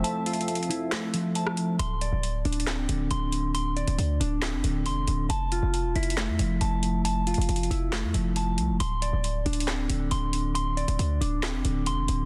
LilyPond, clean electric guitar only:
\new Staff \with { instrumentName = "Clean electric guitar" } { \time 4/4 \key d \minor \tempo 4 = 137 <f a e' a''>8 f'4 e'8 a8 f8 a''4 | c'''8 d''4 d'8 c'8 d8 c'''4 | c'''8 d''4 d'8 c'8 d8 c'''4 | a''8 f'4 e'8 a8 f8 a''4 |
a''8 f'4 e'8 a8 f8 a''4 | c'''8 d''4 d'8 c'8 d8 c'''4 | c'''8 d''4 d'8 c'8 d8 c'''4 | }